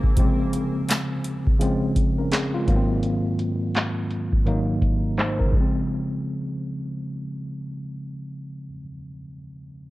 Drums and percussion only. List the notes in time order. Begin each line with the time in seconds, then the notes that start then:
0.04 kick
0.17 kick, closed hi-hat
0.53 closed hi-hat
0.89 snare, clap, closed hi-hat
1.24 closed hi-hat
1.47 kick
1.61 closed hi-hat
1.96 kick, closed hi-hat
2.32 snare, clap, closed hi-hat
2.68 kick, closed hi-hat
3.03 closed hi-hat
3.39 closed hi-hat
3.75 snare, clap, closed hi-hat
4.11 closed hi-hat
4.33 kick
4.47 closed hi-hat
4.82 kick, closed hi-hat
5.17 snare, clap, closed hi-hat
5.40 kick
5.53 kick